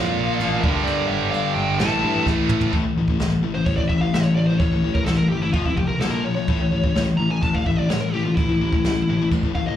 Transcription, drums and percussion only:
0, 0, Header, 1, 2, 480
1, 0, Start_track
1, 0, Tempo, 465116
1, 905, Time_signature, 4, 2, 24, 8
1, 3789, Tempo, 470958
1, 9998, End_track
2, 0, Start_track
2, 0, Title_t, "Drums"
2, 415, Note_on_c, 9, 52, 74
2, 518, Note_off_c, 9, 52, 0
2, 657, Note_on_c, 9, 36, 117
2, 760, Note_off_c, 9, 36, 0
2, 898, Note_on_c, 9, 52, 71
2, 1001, Note_off_c, 9, 52, 0
2, 1380, Note_on_c, 9, 52, 71
2, 1483, Note_off_c, 9, 52, 0
2, 1851, Note_on_c, 9, 52, 68
2, 1858, Note_on_c, 9, 38, 125
2, 1954, Note_off_c, 9, 52, 0
2, 1961, Note_off_c, 9, 38, 0
2, 2337, Note_on_c, 9, 36, 87
2, 2342, Note_on_c, 9, 38, 65
2, 2441, Note_off_c, 9, 36, 0
2, 2445, Note_off_c, 9, 38, 0
2, 2573, Note_on_c, 9, 45, 101
2, 2676, Note_off_c, 9, 45, 0
2, 2693, Note_on_c, 9, 43, 104
2, 2796, Note_off_c, 9, 43, 0
2, 2818, Note_on_c, 9, 36, 111
2, 2822, Note_on_c, 9, 52, 57
2, 2921, Note_off_c, 9, 36, 0
2, 2925, Note_off_c, 9, 52, 0
2, 3177, Note_on_c, 9, 36, 84
2, 3281, Note_off_c, 9, 36, 0
2, 3299, Note_on_c, 9, 52, 65
2, 3306, Note_on_c, 9, 38, 115
2, 3402, Note_off_c, 9, 52, 0
2, 3409, Note_off_c, 9, 38, 0
2, 3780, Note_on_c, 9, 36, 116
2, 3782, Note_on_c, 9, 52, 65
2, 3882, Note_off_c, 9, 36, 0
2, 3884, Note_off_c, 9, 52, 0
2, 3899, Note_on_c, 9, 36, 86
2, 4001, Note_off_c, 9, 36, 0
2, 4019, Note_on_c, 9, 36, 93
2, 4121, Note_off_c, 9, 36, 0
2, 4262, Note_on_c, 9, 52, 63
2, 4270, Note_on_c, 9, 38, 107
2, 4364, Note_off_c, 9, 52, 0
2, 4371, Note_off_c, 9, 38, 0
2, 4732, Note_on_c, 9, 52, 61
2, 4734, Note_on_c, 9, 36, 114
2, 4834, Note_off_c, 9, 52, 0
2, 4836, Note_off_c, 9, 36, 0
2, 5092, Note_on_c, 9, 36, 93
2, 5194, Note_off_c, 9, 36, 0
2, 5204, Note_on_c, 9, 52, 65
2, 5211, Note_on_c, 9, 38, 113
2, 5306, Note_off_c, 9, 52, 0
2, 5313, Note_off_c, 9, 38, 0
2, 5686, Note_on_c, 9, 52, 59
2, 5692, Note_on_c, 9, 36, 123
2, 5787, Note_off_c, 9, 52, 0
2, 5794, Note_off_c, 9, 36, 0
2, 5812, Note_on_c, 9, 36, 84
2, 5914, Note_off_c, 9, 36, 0
2, 5931, Note_on_c, 9, 36, 92
2, 6033, Note_off_c, 9, 36, 0
2, 6165, Note_on_c, 9, 52, 57
2, 6172, Note_on_c, 9, 38, 114
2, 6267, Note_off_c, 9, 52, 0
2, 6274, Note_off_c, 9, 38, 0
2, 6648, Note_on_c, 9, 52, 58
2, 6653, Note_on_c, 9, 36, 103
2, 6750, Note_off_c, 9, 52, 0
2, 6755, Note_off_c, 9, 36, 0
2, 7014, Note_on_c, 9, 36, 81
2, 7116, Note_off_c, 9, 36, 0
2, 7138, Note_on_c, 9, 52, 61
2, 7145, Note_on_c, 9, 38, 115
2, 7239, Note_off_c, 9, 52, 0
2, 7247, Note_off_c, 9, 38, 0
2, 7617, Note_on_c, 9, 36, 120
2, 7618, Note_on_c, 9, 52, 63
2, 7719, Note_off_c, 9, 36, 0
2, 7720, Note_off_c, 9, 52, 0
2, 7738, Note_on_c, 9, 36, 93
2, 7840, Note_off_c, 9, 36, 0
2, 7858, Note_on_c, 9, 36, 92
2, 7959, Note_off_c, 9, 36, 0
2, 8094, Note_on_c, 9, 52, 66
2, 8102, Note_on_c, 9, 38, 106
2, 8196, Note_off_c, 9, 52, 0
2, 8204, Note_off_c, 9, 38, 0
2, 8579, Note_on_c, 9, 36, 106
2, 8580, Note_on_c, 9, 52, 64
2, 8680, Note_off_c, 9, 36, 0
2, 8682, Note_off_c, 9, 52, 0
2, 8940, Note_on_c, 9, 36, 91
2, 9042, Note_off_c, 9, 36, 0
2, 9058, Note_on_c, 9, 52, 69
2, 9065, Note_on_c, 9, 38, 119
2, 9160, Note_off_c, 9, 52, 0
2, 9167, Note_off_c, 9, 38, 0
2, 9542, Note_on_c, 9, 36, 118
2, 9543, Note_on_c, 9, 52, 68
2, 9643, Note_off_c, 9, 36, 0
2, 9645, Note_off_c, 9, 52, 0
2, 9660, Note_on_c, 9, 36, 89
2, 9762, Note_off_c, 9, 36, 0
2, 9782, Note_on_c, 9, 36, 92
2, 9884, Note_off_c, 9, 36, 0
2, 9998, End_track
0, 0, End_of_file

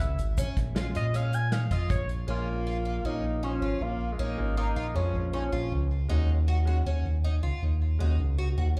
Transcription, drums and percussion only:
0, 0, Header, 1, 2, 480
1, 0, Start_track
1, 0, Key_signature, -5, "minor"
1, 0, Tempo, 381194
1, 476, Time_signature, 5, 2, 24, 8
1, 11077, End_track
2, 0, Start_track
2, 0, Title_t, "Drums"
2, 234, Note_on_c, 9, 82, 19
2, 237, Note_on_c, 9, 42, 62
2, 360, Note_off_c, 9, 82, 0
2, 363, Note_off_c, 9, 42, 0
2, 475, Note_on_c, 9, 36, 94
2, 475, Note_on_c, 9, 42, 79
2, 475, Note_on_c, 9, 82, 63
2, 601, Note_off_c, 9, 36, 0
2, 601, Note_off_c, 9, 42, 0
2, 601, Note_off_c, 9, 82, 0
2, 715, Note_on_c, 9, 36, 74
2, 716, Note_on_c, 9, 38, 34
2, 716, Note_on_c, 9, 42, 63
2, 841, Note_off_c, 9, 36, 0
2, 842, Note_off_c, 9, 38, 0
2, 842, Note_off_c, 9, 42, 0
2, 955, Note_on_c, 9, 38, 102
2, 955, Note_on_c, 9, 42, 78
2, 1081, Note_off_c, 9, 38, 0
2, 1081, Note_off_c, 9, 42, 0
2, 1195, Note_on_c, 9, 42, 64
2, 1321, Note_off_c, 9, 42, 0
2, 1436, Note_on_c, 9, 42, 82
2, 1437, Note_on_c, 9, 82, 20
2, 1562, Note_off_c, 9, 42, 0
2, 1563, Note_off_c, 9, 82, 0
2, 1675, Note_on_c, 9, 42, 64
2, 1675, Note_on_c, 9, 82, 51
2, 1801, Note_off_c, 9, 42, 0
2, 1801, Note_off_c, 9, 82, 0
2, 1913, Note_on_c, 9, 38, 108
2, 1913, Note_on_c, 9, 42, 76
2, 2039, Note_off_c, 9, 38, 0
2, 2039, Note_off_c, 9, 42, 0
2, 2153, Note_on_c, 9, 36, 71
2, 2153, Note_on_c, 9, 38, 35
2, 2153, Note_on_c, 9, 42, 60
2, 2279, Note_off_c, 9, 36, 0
2, 2279, Note_off_c, 9, 38, 0
2, 2279, Note_off_c, 9, 42, 0
2, 2391, Note_on_c, 9, 42, 77
2, 2391, Note_on_c, 9, 82, 20
2, 2393, Note_on_c, 9, 36, 102
2, 2517, Note_off_c, 9, 42, 0
2, 2517, Note_off_c, 9, 82, 0
2, 2519, Note_off_c, 9, 36, 0
2, 2634, Note_on_c, 9, 42, 53
2, 2760, Note_off_c, 9, 42, 0
2, 11077, End_track
0, 0, End_of_file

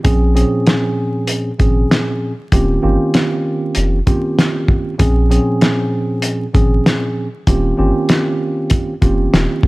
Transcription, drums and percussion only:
0, 0, Header, 1, 2, 480
1, 0, Start_track
1, 0, Tempo, 618557
1, 37, Time_signature, 4, 2, 24, 8
1, 7507, End_track
2, 0, Start_track
2, 0, Title_t, "Drums"
2, 35, Note_on_c, 9, 42, 92
2, 38, Note_on_c, 9, 36, 119
2, 113, Note_off_c, 9, 42, 0
2, 115, Note_off_c, 9, 36, 0
2, 284, Note_on_c, 9, 42, 49
2, 362, Note_off_c, 9, 42, 0
2, 517, Note_on_c, 9, 42, 73
2, 523, Note_on_c, 9, 38, 109
2, 594, Note_off_c, 9, 42, 0
2, 600, Note_off_c, 9, 38, 0
2, 989, Note_on_c, 9, 42, 87
2, 1066, Note_off_c, 9, 42, 0
2, 1238, Note_on_c, 9, 42, 54
2, 1239, Note_on_c, 9, 36, 86
2, 1315, Note_off_c, 9, 42, 0
2, 1317, Note_off_c, 9, 36, 0
2, 1485, Note_on_c, 9, 38, 112
2, 1486, Note_on_c, 9, 42, 74
2, 1562, Note_off_c, 9, 38, 0
2, 1563, Note_off_c, 9, 42, 0
2, 1956, Note_on_c, 9, 42, 90
2, 1958, Note_on_c, 9, 36, 114
2, 2033, Note_off_c, 9, 42, 0
2, 2035, Note_off_c, 9, 36, 0
2, 2436, Note_on_c, 9, 42, 74
2, 2442, Note_on_c, 9, 38, 105
2, 2514, Note_off_c, 9, 42, 0
2, 2520, Note_off_c, 9, 38, 0
2, 2908, Note_on_c, 9, 42, 86
2, 2985, Note_off_c, 9, 42, 0
2, 3158, Note_on_c, 9, 42, 55
2, 3159, Note_on_c, 9, 36, 88
2, 3235, Note_off_c, 9, 42, 0
2, 3237, Note_off_c, 9, 36, 0
2, 3403, Note_on_c, 9, 38, 111
2, 3404, Note_on_c, 9, 42, 75
2, 3481, Note_off_c, 9, 38, 0
2, 3482, Note_off_c, 9, 42, 0
2, 3635, Note_on_c, 9, 36, 85
2, 3713, Note_off_c, 9, 36, 0
2, 3875, Note_on_c, 9, 42, 91
2, 3878, Note_on_c, 9, 36, 115
2, 3953, Note_off_c, 9, 42, 0
2, 3955, Note_off_c, 9, 36, 0
2, 4124, Note_on_c, 9, 42, 51
2, 4201, Note_off_c, 9, 42, 0
2, 4356, Note_on_c, 9, 42, 75
2, 4362, Note_on_c, 9, 38, 109
2, 4434, Note_off_c, 9, 42, 0
2, 4440, Note_off_c, 9, 38, 0
2, 4829, Note_on_c, 9, 42, 87
2, 4906, Note_off_c, 9, 42, 0
2, 5079, Note_on_c, 9, 42, 53
2, 5080, Note_on_c, 9, 36, 89
2, 5157, Note_off_c, 9, 42, 0
2, 5158, Note_off_c, 9, 36, 0
2, 5325, Note_on_c, 9, 38, 111
2, 5326, Note_on_c, 9, 42, 72
2, 5402, Note_off_c, 9, 38, 0
2, 5403, Note_off_c, 9, 42, 0
2, 5797, Note_on_c, 9, 42, 92
2, 5799, Note_on_c, 9, 36, 120
2, 5875, Note_off_c, 9, 42, 0
2, 5876, Note_off_c, 9, 36, 0
2, 6277, Note_on_c, 9, 42, 74
2, 6283, Note_on_c, 9, 38, 107
2, 6354, Note_off_c, 9, 42, 0
2, 6361, Note_off_c, 9, 38, 0
2, 6750, Note_on_c, 9, 42, 85
2, 6760, Note_on_c, 9, 36, 93
2, 6827, Note_off_c, 9, 42, 0
2, 6837, Note_off_c, 9, 36, 0
2, 6999, Note_on_c, 9, 42, 55
2, 7000, Note_on_c, 9, 36, 86
2, 7077, Note_off_c, 9, 36, 0
2, 7077, Note_off_c, 9, 42, 0
2, 7244, Note_on_c, 9, 38, 111
2, 7245, Note_on_c, 9, 42, 74
2, 7322, Note_off_c, 9, 38, 0
2, 7323, Note_off_c, 9, 42, 0
2, 7475, Note_on_c, 9, 36, 91
2, 7507, Note_off_c, 9, 36, 0
2, 7507, End_track
0, 0, End_of_file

